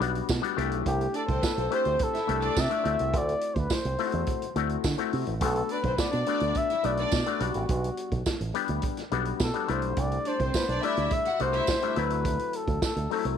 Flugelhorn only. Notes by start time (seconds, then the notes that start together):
0.87 G4
1.16 A4
1.74 C5
2.03 A4
2.60 E5
3.17 D5
3.55 C5
3.59 B4
3.74 C5
5.45 A4
5.72 B4
6.00 D5
6.57 E5
6.85 D5
7.42 F#4
9.43 A4
9.71 C5
10.00 D5
10.28 C5
10.84 D5
11.13 E5
11.41 C5
11.98 B4
12.56 A4
12.84 A4
13.12 A4